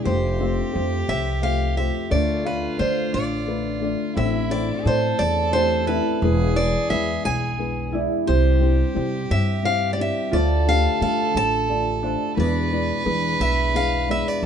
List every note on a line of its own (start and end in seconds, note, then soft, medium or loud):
0.00 1.13 D4 soft
0.05 2.07 F1 medium
0.05 0.59 F1 loud
0.05 2.07 F2 medium
0.05 0.32 A3 medium
0.05 0.33 F4 medium
0.05 2.12 G4 loud
0.05 0.33 G4 medium
0.05 1.04 C5 medium
0.05 0.33 C5 medium
0.39 0.67 A3 medium
0.39 3.40 C4 medium
0.39 0.67 F4 medium
0.39 0.67 G4 medium
0.39 0.68 C5 medium
0.72 1.02 F2 medium
0.72 1.27 A3 medium
0.72 1.27 F4 medium
0.72 1.28 G4 medium
0.72 1.28 C5 medium
1.09 1.88 C2 medium
1.09 1.43 E5 medium
1.42 1.69 A3 medium
1.42 1.70 F4 medium
1.42 1.70 G4 soft
1.42 1.70 C5 medium
1.42 1.75 F5 medium
1.76 2.08 A3 medium
1.76 2.09 F4 medium
1.76 2.11 G4 medium
1.76 2.12 C5 medium
1.76 2.11 E5 medium
2.10 4.12 D2 medium
2.10 2.64 D2 loud
2.10 4.12 D3 medium
2.10 2.38 A3 medium
2.10 5.44 A3 medium
2.10 2.38 D4 medium
2.10 4.17 F4 medium
2.10 2.38 F4 medium
2.10 2.43 D5 medium
2.10 2.39 D5 medium
2.44 2.71 A3 medium
2.44 2.72 D4 medium
2.44 2.72 F4 medium
2.44 2.79 B4 medium
2.44 2.72 F5 medium
2.77 3.06 D3 medium
2.77 3.32 A3 medium
2.77 3.33 D4 medium
2.77 3.33 F4 medium
2.77 3.11 C5 medium
2.77 3.33 D5 medium
3.12 3.93 A1 medium
3.12 5.92 D4 medium
3.12 3.87 D5 medium
3.46 3.74 A3 medium
3.46 3.74 D4 medium
3.46 3.74 F4 medium
3.46 3.75 B4 medium
3.80 4.14 A3 medium
3.80 4.16 D4 medium
3.80 4.16 F4 medium
3.80 4.16 D5 medium
4.15 6.17 A1 medium
4.15 4.69 A1 loud
4.15 6.17 A2 medium
4.15 4.43 A3 medium
4.15 4.43 C4 medium
4.15 4.85 E4 loud
4.15 4.43 E4 medium
4.15 4.44 C5 medium
4.15 4.51 E5 medium
4.50 4.77 A3 medium
4.50 4.77 C4 medium
4.50 4.78 E4 medium
4.50 4.78 C5 medium
4.50 4.86 D5 medium
4.84 5.11 A2 loud
4.84 5.38 A3 medium
4.84 5.38 C4 medium
4.84 5.39 E4 medium
4.84 6.23 A4 loud
4.84 5.21 C5 medium
4.84 5.39 D5 medium
5.19 5.99 E2 medium
5.19 5.50 D5 medium
5.53 5.80 A3 medium
5.53 5.80 C4 medium
5.53 5.80 E4 medium
5.53 5.81 G4 medium
5.53 5.87 C5 medium
5.87 6.21 A3 medium
5.87 6.22 C4 medium
5.87 7.92 E4 soft
5.87 6.22 E4 medium
5.87 6.22 A4 medium
5.87 6.58 B4 medium
6.22 6.75 E1 loud
6.22 8.24 E2 medium
6.22 8.24 E3 medium
6.22 6.49 G#3 medium
6.22 6.50 B3 medium
6.22 6.50 E4 medium
6.22 7.93 G#4 loud
6.22 6.50 B4 medium
6.55 6.82 G#3 medium
6.55 6.83 B3 medium
6.55 6.83 E4 medium
6.55 6.83 B4 medium
6.55 6.90 D5 medium
6.89 7.17 E2 medium
6.89 7.44 G#3 medium
6.89 7.44 B3 medium
6.89 7.45 E4 medium
6.89 7.45 B4 medium
6.89 7.25 E5 medium
7.25 8.05 B1 medium
7.25 7.98 G#5 medium
7.58 7.85 G#3 medium
7.58 7.86 B3 soft
7.58 7.86 E4 medium
7.58 7.86 B4 medium
7.92 8.27 G#3 medium
7.92 8.27 B3 medium
7.92 10.37 E4 medium
7.92 8.26 E4 medium
7.92 8.28 D5 medium
8.26 10.29 C2 medium
8.26 8.81 C2 medium
8.26 10.29 C3 medium
8.26 8.54 G3 medium
8.26 8.54 C4 medium
8.26 8.55 E4 medium
8.26 10.35 G4 medium
8.26 9.33 C5 medium
8.26 8.55 C5 medium
8.60 8.88 G3 medium
8.60 8.88 C4 medium
8.60 8.88 E4 medium
8.60 8.89 C5 medium
8.94 9.23 C3 medium
8.94 9.49 G3 medium
8.94 9.50 C4 medium
8.94 9.50 E4 medium
8.94 9.50 C5 medium
9.31 10.10 G2 medium
9.31 9.65 E5 medium
9.63 9.91 G3 medium
9.63 9.91 C4 medium
9.63 9.92 E4 medium
9.63 9.92 C5 medium
9.63 9.90 F5 medium
9.93 9.99 D5 medium
9.98 10.32 G3 medium
9.98 10.33 C4 medium
9.98 10.33 E4 medium
9.98 10.33 D5 medium
9.98 10.35 E5 medium
10.31 10.86 D2 loud
10.31 12.34 D2 medium
10.31 12.34 D3 medium
10.31 10.59 A3 medium
10.31 10.60 D4 medium
10.31 12.84 F4 medium
10.31 10.60 F4 medium
10.31 12.37 A4 loud
10.31 10.61 C5 medium
10.31 10.68 D5 medium
10.67 10.94 A3 medium
10.67 10.94 D4 medium
10.67 10.94 F4 medium
10.67 10.95 G4 medium
10.67 11.01 F5 medium
11.00 11.28 D3 medium
11.00 11.55 A3 medium
11.00 11.55 D4 medium
11.00 11.55 F4 medium
11.00 11.56 A4 medium
11.00 11.33 F5 medium
11.35 12.14 A1 medium
11.35 12.09 A5 loud
11.68 11.96 A3 medium
11.68 11.96 D4 medium
11.68 11.96 F4 medium
11.68 11.96 D5 medium
12.03 12.37 A3 medium
12.03 14.46 D4 medium
12.03 12.37 D4 medium
12.03 12.37 F4 medium
12.03 12.38 C5 medium
12.36 14.38 E2 medium
12.36 12.90 E2 loud
12.36 14.39 B2 medium
12.36 12.64 G#3 medium
12.36 12.64 B3 medium
12.36 12.65 E4 medium
12.36 12.65 B4 medium
12.36 14.44 B4 loud
12.36 13.03 D5 medium
12.70 12.98 G#3 medium
12.70 12.98 B3 medium
12.70 12.99 E4 medium
12.70 12.99 D5 medium
13.03 13.32 E3 medium
13.03 13.59 G#3 medium
13.03 13.59 B3 medium
13.03 13.60 E4 medium
13.03 13.60 B4 medium
13.40 14.20 B1 medium
13.40 13.76 E5 loud
13.73 14.01 G#3 medium
13.73 14.01 B3 medium
13.73 14.01 E4 medium
13.73 14.02 G#4 medium
13.73 14.10 F5 loud
14.07 14.42 G#3 medium
14.07 14.43 B3 medium
14.07 14.43 E4 medium
14.07 14.43 D5 medium
14.07 14.28 E5 medium
14.28 14.45 D5 medium
14.43 14.46 A1 loud